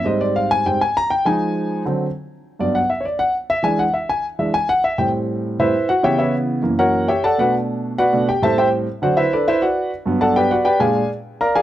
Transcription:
0.04 0.64 G#2 medium
0.04 0.65 G3 medium
0.04 0.66 C4 medium
0.04 0.20 D#5 medium
0.21 0.35 D5 medium
0.36 0.50 F5 medium
0.51 0.65 G#5 loud
0.66 0.79 G#2 soft
0.66 0.79 G3 soft
0.66 0.80 C4 medium
0.66 0.80 G5 medium
0.81 0.95 G#5 loud
0.97 1.11 A#5 loud
1.10 1.25 G5 loud
1.25 1.82 F3 medium
1.25 1.82 G#3 medium
1.25 1.83 D#4 medium
1.25 1.81 G#5 medium
1.85 2.05 D3 medium
1.85 2.05 F#3 soft
1.85 2.06 C4 medium
2.59 2.79 G2 medium
2.59 2.80 F#3 soft
2.59 2.80 B3 medium
2.59 2.75 D5 medium
2.75 2.89 F#5 medium
2.90 3.04 E5 medium
3.01 3.03 C#5 soft
3.05 3.19 D5 medium
3.19 3.34 F#5 medium
3.50 3.64 E5 loud
3.63 3.83 E3 medium
3.63 3.84 G#3 medium
3.63 3.84 D4 medium
3.63 3.79 G#5 loud
3.79 3.94 F#5 medium
3.94 4.09 E5 medium
4.09 4.24 G#5 medium
4.39 4.52 E3 medium
4.39 4.53 G#3 soft
4.39 4.53 D4 medium
4.39 4.54 E5 medium
4.54 4.69 G#5 loud
4.69 4.84 F#5 loud
4.84 4.99 E5 medium
4.98 5.58 A2 medium
4.98 5.58 G3 soft
4.98 5.58 C4 medium
4.98 5.08 G5 medium
5.59 5.73 A2 medium
5.59 5.73 G3 soft
5.59 5.73 C4 medium
5.59 5.87 E4 medium
5.59 5.87 B4 medium
5.59 5.87 C5 medium
5.59 5.87 E5 medium
5.89 6.04 F#4 medium
5.89 6.03 F#5 medium
6.03 6.60 C#3 medium
6.03 6.60 E3 medium
6.03 6.61 B3 medium
6.03 6.19 G4 medium
6.03 6.18 C#5 medium
6.03 6.17 E5 medium
6.03 6.18 G5 medium
6.18 6.33 E4 medium
6.18 6.34 B4 medium
6.18 6.33 C#5 medium
6.18 6.33 E5 medium
6.62 7.06 F#2 medium
6.62 7.06 E3 soft
6.62 7.06 A#3 medium
6.79 7.07 F#4 medium
6.79 7.07 A#4 medium
6.79 7.07 C#5 medium
6.79 7.06 F#5 medium
7.08 7.23 G4 medium
7.08 7.23 C#5 medium
7.08 7.23 E5 medium
7.08 7.23 G5 medium
7.24 7.38 A4 medium
7.24 7.38 D5 medium
7.24 7.38 F#5 medium
7.24 7.38 A5 medium
7.38 8.11 B2 soft
7.38 8.12 A3 soft
7.38 8.12 D4 medium
7.38 7.54 F#4 medium
7.38 7.54 B4 medium
7.38 7.54 D5 medium
7.38 7.53 F#5 medium
7.98 8.26 F#4 medium
7.98 8.26 B4 medium
7.98 8.26 D5 medium
7.98 8.26 F#5 medium
8.13 8.26 B2 medium
8.13 8.27 A3 medium
8.13 8.27 D4 medium
8.28 8.43 G4 medium
8.28 8.43 G5 medium
8.42 8.85 A2 medium
8.42 8.85 G3 medium
8.42 8.86 C4 medium
8.42 8.58 A4 medium
8.42 8.57 C5 medium
8.42 8.57 E5 medium
8.42 8.57 A5 loud
8.58 8.67 G4 medium
8.58 8.67 C5 medium
8.58 8.67 E5 medium
8.58 8.67 G5 medium
9.02 9.22 D3 medium
9.02 9.22 F#3 soft
9.02 9.22 C4 medium
9.02 9.17 F#4 medium
9.02 9.16 C5 medium
9.02 9.17 D5 medium
9.02 9.17 F#5 medium
9.17 9.32 E4 medium
9.17 9.32 B4 medium
9.17 9.32 C5 medium
9.17 9.31 E5 medium
9.33 9.47 D4 medium
9.33 9.47 A4 medium
9.33 9.47 B4 medium
9.33 9.47 D5 medium
9.48 9.62 E4 medium
9.48 9.61 B4 medium
9.48 9.62 C5 medium
9.48 9.62 E5 loud
9.62 9.90 F#4 medium
9.62 9.90 B4 medium
9.62 9.90 D5 medium
9.62 9.90 F#5 medium
10.06 10.48 G2 medium
10.06 10.49 F#3 medium
10.06 10.49 B3 medium
10.21 10.36 A4 medium
10.21 10.36 D5 medium
10.21 10.36 F#5 medium
10.21 10.36 A5 medium
10.36 10.51 G4 medium
10.36 10.50 B4 medium
10.36 10.50 D5 medium
10.36 10.51 G5 loud
10.51 10.66 F#4 medium
10.51 10.64 B4 medium
10.51 10.64 D5 medium
10.51 10.65 F#5 medium
10.65 10.80 G4 medium
10.65 10.80 B4 medium
10.65 10.79 D5 medium
10.65 10.80 G5 medium
10.79 11.00 A#2 medium
10.79 11.00 G#3 medium
10.79 11.01 D4 medium
10.79 11.08 G#4 medium
10.79 11.09 D5 medium
10.79 11.08 F5 medium
10.79 11.08 G#5 medium
11.41 11.55 A#4 medium
11.41 11.55 D5 medium
11.41 11.55 F5 medium
11.41 11.55 A#5 medium
11.55 11.62 G#4 medium
11.55 11.62 D5 medium
11.55 11.62 F5 medium
11.55 11.62 G#5 medium

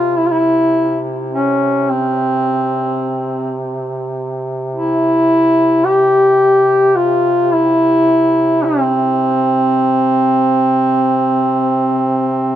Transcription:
0.00 12.55 C3 soft
0.00 0.18 F4 medium
0.17 0.27 E4 medium
0.26 0.32 F4 medium
0.31 1.06 E4 medium
1.32 1.91 C#4 medium
1.90 3.59 C4 medium
4.75 5.86 E4 loud
5.85 6.97 G4 loud
6.96 7.54 F4 medium
7.52 8.66 E4 loud
8.64 12.55 C4 medium

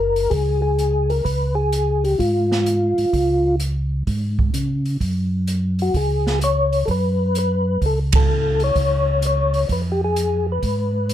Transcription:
0.00 0.28 F#1 medium
0.00 0.33 A#4 loud
0.16 open hi-hat soft
0.30 1.21 C#2 medium
0.30 0.61 G#4 medium
0.30 kick soft
0.30 open hi-hat soft
0.62 1.11 G#4 loud
0.79 closed hi-hat soft
1.10 1.24 A#4 medium
1.10 open hi-hat soft
1.25 2.15 C#2 medium
1.25 1.55 B4 medium
1.25 kick soft
1.25 open hi-hat soft
1.55 2.05 G#4 medium
1.73 closed hi-hat medium
2.04 2.20 G4 medium
2.04 open hi-hat soft
2.18 2.94 G#2 medium
2.18 3.56 F4 medium
2.18 kick soft
2.18 open hi-hat soft
2.52 snare soft
2.66 closed hi-hat soft
2.98 3.06 G#2 soft
2.98 open hi-hat soft
3.13 4.03 C#2 medium
3.13 kick soft
3.13 open hi-hat soft
3.60 closed hi-hat soft
4.07 4.51 G#2 medium
4.07 kick soft
4.07 open hi-hat soft
4.39 kick soft
4.54 4.97 C#3 medium
4.54 closed hi-hat medium
4.86 open hi-hat soft
5.00 5.90 F#2 medium
5.00 kick soft
5.00 open hi-hat soft
5.47 closed hi-hat medium
5.79 5.96 F#4 medium
5.79 open hi-hat soft
5.94 6.84 C#2 medium
5.94 6.39 G#4 medium
5.94 kick soft
5.94 open hi-hat soft
6.27 snare soft
6.41 6.86 C#5 loud
6.41 closed hi-hat medium
6.73 open hi-hat soft
6.85 7.78 F#2 medium
6.85 6.89 A4 medium
6.85 kick soft
6.85 open hi-hat soft
6.91 7.37 B4 medium
7.35 7.85 B4 loud
7.35 closed hi-hat medium
7.82 8.71 C#2 medium
7.82 kick soft
7.82 open hi-hat soft
7.86 7.99 A4 medium
8.12 8.63 A4 medium
8.12 kick medium
8.12 ride medium
8.60 open hi-hat soft
8.64 9.25 C#5 loud
8.75 9.65 C#2 medium
8.75 kick soft
8.75 open hi-hat soft
9.22 closed hi-hat medium
9.26 9.68 C#5 loud
9.54 open hi-hat soft
9.69 10.59 F2 medium
9.69 9.82 B4 medium
9.69 kick soft
9.69 open hi-hat soft
9.92 10.01 G4 medium
10.04 10.46 G#4 medium
10.16 closed hi-hat medium
10.52 11.14 B4 medium
10.62 11.14 G#2 medium
10.62 kick soft
10.62 open hi-hat soft
11.09 closed hi-hat medium

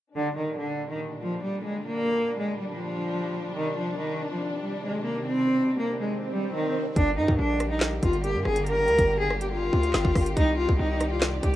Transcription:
0.15 3.52 A#2 medium
0.15 3.52 D3 medium
0.15 0.34 D3 loud
0.15 6.92 G3 medium
0.15 6.92 D4 medium
0.36 0.55 D#3 medium
0.58 0.88 D3 medium
0.89 0.99 D#3 medium
1.22 1.40 F3 medium
1.43 1.61 G3 medium
1.64 1.83 G#3 medium
1.86 2.36 A#3 loud
2.39 2.57 G#3 medium
2.60 2.69 G3 medium
2.71 3.52 F3 medium
3.56 6.93 C3 medium
3.56 6.93 D#3 medium
3.56 3.74 D#3 medium
3.56 swell medium
3.77 3.95 F3 medium
3.98 4.28 D#3 medium
4.31 4.39 F3 medium
4.62 4.80 G3 medium
4.83 5.02 G#3 medium
5.05 5.23 A#3 medium
5.26 5.76 C4 loud
5.79 5.97 A#3 medium
6.00 6.09 G#3 medium
6.32 6.50 G3 medium
6.54 6.72 D#3 medium
6.96 7.19 G1 loud
6.96 10.33 D3 medium
6.96 10.33 G3 medium
6.96 10.33 A#3 medium
6.96 7.15 D4 loud
6.96 11.56 G4 medium
6.96 kick loud
6.96 closed hi-hat medium
7.17 7.28 G2 loud
7.17 7.36 D#4 medium
7.28 7.38 G2 loud
7.28 kick medium
7.39 8.00 A#1 loud
7.39 7.69 D4 medium
7.60 cross-stick medium
7.60 closed hi-hat medium
7.70 7.79 D#4 medium
7.81 snare loud
7.81 clap loud
7.81 closed hi-hat medium
8.03 8.36 G1 loud
8.03 8.21 F4 medium
8.03 kick medium
8.03 closed hi-hat medium
8.13 closed hi-hat soft
8.24 8.42 G4 medium
8.24 closed hi-hat medium
8.35 8.45 G2 loud
8.45 8.89 G1 loud
8.45 8.63 G#4 medium
8.45 cross-stick medium
8.56 closed hi-hat medium
8.66 9.17 A#4 loud
8.66 closed hi-hat medium
8.88 8.98 D2 loud
8.88 closed hi-hat medium
8.98 9.70 G1 loud
8.98 kick loud
8.98 closed hi-hat medium
9.20 9.38 G#4 medium
9.30 cross-stick medium
9.41 9.50 G4 medium
9.41 closed hi-hat medium
9.52 10.33 F4 loud
9.73 9.93 D2 loud
9.73 kick medium
9.83 closed hi-hat medium
9.93 10.04 G1 loud
9.93 snare loud
9.93 clap medium
10.05 10.15 G1 loud
10.05 kick loud
10.15 10.36 G1 loud
10.15 kick loud
10.15 cross-stick medium
10.15 open hi-hat soft
10.26 closed hi-hat medium
10.37 10.67 C2 loud
10.37 11.56 C3 medium
10.37 11.56 D#3 medium
10.37 10.55 D#4 loud
10.37 11.56 D5 medium
10.37 kick loud
10.37 closed hi-hat medium
10.58 10.76 F4 medium
10.69 10.79 C2 loud
10.69 kick loud
10.79 11.41 C2 loud
10.79 11.09 D#4 medium
11.01 cross-stick medium
11.01 closed hi-hat medium
11.11 11.20 F4 medium
11.21 snare loud
11.21 clap loud
11.21 closed hi-hat medium
11.43 11.56 C2 loud
11.43 11.56 G4 medium
11.43 kick medium
11.43 closed hi-hat medium

